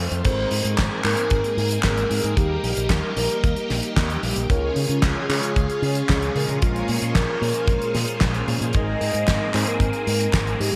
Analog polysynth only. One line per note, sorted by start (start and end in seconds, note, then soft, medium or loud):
0.00 0.22 A3 medium
0.00 0.22 C4 medium
0.00 0.22 F4 medium
0.00 0.22 C5 medium
0.25 1.01 G#2 medium
0.25 1.01 G#3 medium
0.25 1.01 C4 medium
0.25 1.01 D#4 medium
0.25 1.01 A#4 loud
1.04 2.07 G#2 medium
1.04 2.08 G#3 medium
1.04 2.08 C4 medium
1.04 2.07 D#4 medium
1.04 2.08 A#4 loud
2.11 2.34 G#3 loud
2.11 2.34 C4 medium
2.11 2.34 D#4 medium
2.11 2.34 G#4 loud
2.37 3.14 G3 loud
2.37 3.14 A#3 medium
2.37 3.14 D#4 medium
2.37 3.14 A#4 loud
3.17 4.20 G3 medium
3.17 4.20 A#3 medium
3.17 4.20 D#4 medium
3.17 4.20 A#4 loud
4.23 4.46 G3 loud
4.23 4.47 A#3 medium
4.23 4.46 D#4 medium
4.23 4.46 G4 loud
4.50 5.26 C#3 loud
4.50 5.26 G#3 medium
4.50 5.26 C#4 medium
4.50 5.26 F4 medium
4.50 5.26 C#5 loud
5.29 6.32 C#3 medium
5.29 6.32 G#3 medium
5.29 6.32 C#4 medium
5.29 6.32 F4 medium
5.29 6.32 C#5 loud
6.35 6.59 A#2 loud
6.35 6.59 G#3 medium
6.35 6.59 C#4 medium
6.35 6.59 F4 medium
6.35 6.59 A#4 loud
6.62 7.39 A#2 medium
6.62 7.39 G#3 medium
6.62 7.39 C#4 medium
6.62 7.39 F4 medium
6.62 7.39 A#4 loud
7.42 8.45 A#2 medium
7.42 8.45 G#3 medium
7.42 8.45 C#4 medium
7.42 8.45 F4 medium
7.42 8.45 A#4 loud
8.48 8.71 G#2 loud
8.48 8.71 G#3 medium
8.48 8.71 C#4 medium
8.48 8.71 F4 medium
8.48 8.71 G#4 loud
8.74 9.51 G#2 medium
8.74 9.51 G#3 medium
8.74 9.51 C4 medium
8.74 9.51 D#4 medium
8.74 9.51 A#4 loud
9.54 10.57 G#2 medium
9.54 10.57 G#3 medium
9.54 10.57 C4 medium
9.54 10.57 D#4 medium
9.54 10.57 A#4 loud
10.60 10.76 G#3 loud
10.60 10.76 C4 medium
10.60 10.76 D#4 medium
10.60 10.76 G#4 loud